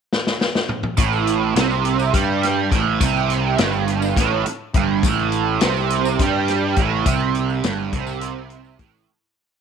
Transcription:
0.13 snare medium
0.27 snare medium
0.41 snare medium
0.55 snare medium
0.69 mid tom medium
0.83 mid tom loud
0.97 1.52 A1 medium
0.97 1.55 A2 loud
0.97 kick loud
0.97 closed hi-hat medium
0.97 tambourine loud
1.13 tambourine soft
1.27 closed hi-hat medium
1.27 tambourine soft
1.56 2.10 C2 medium
1.56 2.13 C3 loud
1.56 snare loud
1.56 closed hi-hat loud
1.71 tambourine soft
1.85 closed hi-hat medium
1.99 tambourine medium
2.13 2.68 G2 loud
2.13 2.70 G3 loud
2.13 kick loud
2.13 closed hi-hat loud
2.43 snare soft
2.43 closed hi-hat medium
2.43 tambourine soft
2.70 2.99 A1 medium
2.70 3.00 A2 loud
2.70 kick loud
2.70 snare soft
2.70 closed hi-hat medium
2.70 tambourine soft
3.00 3.55 C2 medium
3.00 3.58 C3 medium
3.00 kick loud
3.00 closed hi-hat medium
3.00 tambourine loud
3.16 tambourine soft
3.30 closed hi-hat medium
3.30 tambourine soft
3.58 4.13 G1 medium
3.58 4.16 G2 loud
3.58 snare loud
3.58 closed hi-hat loud
3.73 tambourine soft
3.88 closed hi-hat medium
4.02 tambourine medium
4.17 4.44 A1 loud
4.17 4.45 A2 loud
4.17 kick medium
4.17 snare soft
4.17 closed hi-hat medium
4.46 muted picked electric bass stroke soft
4.46 muted overdriven electric guitar stroke medium
4.46 closed hi-hat medium
4.46 tambourine soft
4.74 5.01 G1 loud
4.74 5.03 G2 loud
4.74 kick loud
4.74 closed hi-hat medium
4.74 tambourine soft
5.03 5.58 A1 medium
5.03 5.61 A2 loud
5.03 kick loud
5.03 closed hi-hat medium
5.03 tambourine loud
5.19 tambourine soft
5.32 closed hi-hat medium
5.32 tambourine soft
5.61 6.16 C2 loud
5.61 6.19 C3 loud
5.61 snare loud
5.61 closed hi-hat medium
5.77 tambourine soft
5.90 closed hi-hat medium
6.05 tambourine medium
6.19 6.73 G2 loud
6.19 6.77 G3 loud
6.19 kick medium
6.19 snare soft
6.19 closed hi-hat medium
6.48 snare soft
6.48 closed hi-hat medium
6.48 tambourine soft
6.76 7.04 A1 medium
6.76 7.06 A2 loud
6.76 kick loud
6.76 closed hi-hat medium
6.76 tambourine soft
7.06 7.60 C2 medium
7.06 7.64 C3 loud
7.06 kick loud
7.06 closed hi-hat loud
7.06 tambourine medium
7.20 tambourine soft
7.35 closed hi-hat medium
7.50 tambourine soft
7.64 7.91 G1 loud
7.64 7.93 G2 loud
7.64 snare loud
7.64 closed hi-hat loud
7.93 8.76 C2 medium
7.93 8.79 C3 loud
7.93 kick loud
7.93 closed hi-hat medium
8.07 tambourine medium
8.21 closed hi-hat loud
8.50 closed hi-hat medium
8.65 tambourine soft
8.79 9.06 A1 medium
8.79 9.08 A2 loud
8.79 kick loud
8.79 closed hi-hat medium

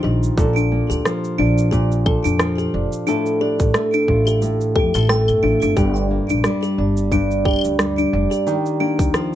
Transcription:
0.00 0.45 D#3 medium
0.00 1.05 F3 medium
0.00 0.71 A#3 medium
0.00 0.38 G4 medium
0.00 0.21 G4 medium
0.04 0.27 A#1 medium
0.04 0.45 D#4 medium
0.23 cabasa medium
0.38 0.79 A#1 loud
0.38 1.71 A#2 medium
0.38 2.06 A4 medium
0.38 kick loud
0.38 cabasa medium
0.56 0.65 D4 medium
0.56 cabasa soft
0.72 3.15 A#3 medium
0.90 1.00 D2 medium
0.90 1.04 G4 medium
0.90 cabasa medium
1.05 2.39 F3 medium
1.05 cross-stick medium
1.05 cabasa medium
1.24 cabasa soft
1.38 2.14 A#1 medium
1.38 1.49 D4 medium
1.38 2.73 D4 medium
1.58 cabasa medium
1.71 3.07 A#2 medium
1.71 1.90 G4 medium
1.71 kick medium
1.71 cabasa medium
1.92 cabasa soft
2.06 3.08 A4 medium
2.06 kick loud
2.06 claves medium
2.24 2.65 F2 medium
2.24 2.33 D4 medium
2.24 cabasa medium
2.39 3.74 F3 medium
2.39 cross-stick loud
2.39 cabasa medium
2.58 2.73 G4 medium
2.58 cabasa soft
2.74 2.86 F1 medium
2.74 3.41 D4 medium
2.92 cabasa medium
3.07 4.41 A2 medium
3.07 3.18 D4 medium
3.07 4.75 A4 medium
3.07 cabasa medium
3.26 cabasa soft
3.41 6.10 D4 medium
3.41 3.59 G4 medium
3.60 3.69 A1 medium
3.60 kick loud
3.60 cabasa medium
3.74 5.08 A3 medium
3.74 cross-stick loud
3.74 cabasa medium
3.93 4.02 D4 medium
3.93 cabasa soft
4.08 4.77 A1 medium
4.08 5.42 F4 medium
4.08 kick medium
4.27 4.41 G4 medium
4.27 cabasa medium
4.27 claves medium
4.42 5.76 A2 medium
4.42 cabasa medium
4.61 cabasa soft
4.75 4.88 F2 medium
4.75 4.95 G4 medium
4.75 4.94 A4 medium
4.75 kick loud
4.94 5.28 A1 loud
4.94 5.77 A4 medium
4.94 cabasa medium
4.94 claves medium
4.96 claves soft
4.99 claves soft
5.01 claves soft
5.03 claves soft
5.05 claves soft
5.07 5.84 A3 medium
5.07 5.20 G5 medium
5.07 cross-stick loud
5.07 cabasa medium
5.07 claves soft
5.28 5.38 G1 medium
5.28 cabasa soft
5.28 claves medium
5.43 5.55 A1 loud
5.43 5.61 D4 medium
5.43 5.84 F4 medium
5.62 5.72 G1 loud
5.62 5.76 D4 medium
5.62 cabasa medium
5.77 6.18 G1 medium
5.77 7.10 G2 medium
5.77 5.95 G4 medium
5.77 7.45 G4 medium
5.77 kick loud
5.77 cabasa medium
5.96 cabasa soft
6.11 8.80 A#3 medium
6.29 6.39 A#1 medium
6.29 6.38 D4 medium
6.29 cabasa medium
6.44 7.79 G3 medium
6.44 cross-stick medium
6.44 cabasa medium
6.63 6.77 G4 medium
6.63 cabasa soft
6.78 7.54 G1 medium
6.78 8.12 D4 medium
6.97 cabasa medium
7.12 8.54 G2 medium
7.12 7.23 D4 medium
7.12 kick medium
7.12 cabasa medium
7.31 cabasa soft
7.45 8.47 G4 medium
7.45 7.63 G4 medium
7.45 kick loud
7.45 claves soft
7.48 claves soft
7.51 claves soft
7.53 claves soft
7.56 claves soft
7.59 claves soft
7.61 8.04 D2 medium
7.61 cabasa medium
7.61 claves soft
7.79 9.13 G3 medium
7.79 cross-stick loud
7.79 cabasa medium
7.98 8.07 D4 medium
7.98 cabasa soft
8.13 8.25 F1 medium
8.13 8.54 D4 medium
8.31 8.46 G4 medium
8.31 cabasa medium
8.47 9.35 D#3 medium
8.47 9.35 G4 medium
8.47 cabasa medium
8.66 cabasa soft
8.80 9.35 A#3 medium
8.80 8.91 D4 medium
8.99 9.09 D#2 medium
8.99 kick loud
8.99 cabasa medium
9.14 9.35 F3 medium
9.14 9.32 G4 medium
9.14 cross-stick medium
9.14 cabasa medium

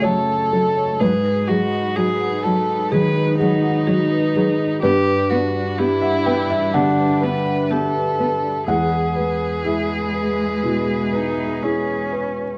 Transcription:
0.00 1.03 C#3 medium
0.00 0.33 A3 medium
0.00 0.97 A3 medium
0.00 0.97 C#4 medium
0.00 0.04 F#4 soft
0.00 0.18 F#4 medium
0.00 0.52 A4 medium
0.00 1.02 A4 medium
0.00 0.96 C#5 medium
0.00 0.95 C#5 medium
0.00 1.03 D#5 medium
0.00 1.03 E5 medium
0.04 0.13 F#3 medium
0.04 0.81 F#4 medium
0.28 0.42 A4 medium
0.52 0.60 F#3 medium
0.52 0.67 A4 medium
0.52 1.01 A4 medium
0.77 0.91 C#5 medium
1.00 2.88 G#2 medium
1.00 4.83 F#3 medium
1.00 1.10 F#3 medium
1.00 4.83 D#4 medium
1.00 1.50 G#4 medium
1.00 1.15 G#4 medium
1.00 2.88 B4 medium
1.00 4.82 B4 medium
1.25 1.39 B4 medium
1.48 1.57 F#3 medium
1.48 1.97 F#4 medium
1.48 2.25 G#4 medium
1.48 1.63 D#5 medium
1.73 1.87 D#5 medium
1.96 2.04 F#3 medium
1.96 2.43 F#4 medium
1.96 2.44 G#4 medium
1.96 2.11 G#4 medium
2.21 2.35 F#5 medium
2.43 2.53 F#3 medium
2.43 3.21 F#4 medium
2.43 2.92 A4 medium
2.91 3.68 D#3 medium
2.91 3.02 F#3 medium
2.91 3.38 G#4 medium
2.91 3.06 G#4 medium
2.91 3.38 B4 medium
3.16 3.30 B4 medium
3.38 3.49 F#3 medium
3.38 4.79 D#4 medium
3.38 4.16 G#4 medium
3.38 3.54 F#5 medium
3.63 3.78 F#5 medium
3.87 3.95 F#3 medium
3.87 4.64 F#4 medium
3.87 4.01 G#4 medium
4.11 4.25 B4 medium
4.34 4.44 F#3 medium
4.34 4.83 G#4 medium
4.34 4.49 B4 medium
4.58 4.73 D#5 medium
4.82 6.70 G2 medium
4.82 8.67 G3 medium
4.82 4.92 B3 medium
4.82 8.67 D4 medium
4.82 5.32 G4 medium
4.82 4.97 G4 medium
4.82 5.30 B4 medium
4.82 8.64 B4 medium
5.07 5.21 B4 medium
5.30 5.39 B3 medium
5.30 5.80 F#4 medium
5.30 6.07 B4 medium
5.30 5.45 D5 medium
5.55 5.69 D5 medium
5.78 5.87 B3 medium
5.78 6.76 E4 medium
5.78 5.92 G4 medium
5.78 6.55 G4 medium
6.02 6.24 E5 medium
6.02 6.16 F#5 medium
6.26 6.34 B3 medium
6.26 7.03 B4 medium
6.26 6.48 G5 medium
6.50 6.72 E5 loud
6.74 7.51 D3 medium
6.74 6.82 B3 medium
6.74 7.25 D4 medium
6.74 6.89 G4 medium
6.74 8.63 F#5 medium
6.98 7.13 B4 medium
7.21 7.30 B3 medium
7.21 7.99 B4 medium
7.21 7.72 B4 medium
7.21 7.37 F#5 medium
7.47 7.61 F#5 medium
7.70 7.78 B3 medium
7.70 8.48 G4 soft
7.70 7.85 G4 medium
7.70 8.67 A4 medium
7.95 8.09 B4 medium
8.19 8.27 B3 medium
8.19 8.67 B4 soft
8.19 8.34 B4 medium
8.43 8.58 D5 medium
8.67 10.59 E2 medium
8.67 12.58 E3 medium
8.67 12.58 G#3 medium
8.67 8.77 G#3 soft
8.67 8.82 E4 medium
8.67 12.08 G#4 medium
8.67 12.57 B4 medium
8.67 9.61 F#5 medium
8.92 9.06 G#4 soft
9.15 9.26 G#3 soft
9.15 9.94 B4 soft
9.15 9.31 B4 soft
9.40 9.55 B4 soft
9.64 11.16 G#3 medium
9.64 9.79 E4 medium
9.64 10.43 G#4 soft
9.64 11.59 E5 medium
9.89 10.04 E5 soft
10.14 10.93 B4 soft
10.63 11.42 B2 soft
10.63 10.78 E4 medium
10.88 11.03 G#4 soft
11.12 11.64 D#4 medium
11.12 11.91 B4 soft
11.12 11.28 E5 soft
11.37 11.52 E5 soft
11.63 12.58 C#4 medium
11.63 11.77 E4 medium
11.63 12.41 G#4 soft
11.87 12.02 G#4 soft
12.12 12.27 G#4 soft
12.12 12.58 B4 soft
12.37 12.51 B4 soft

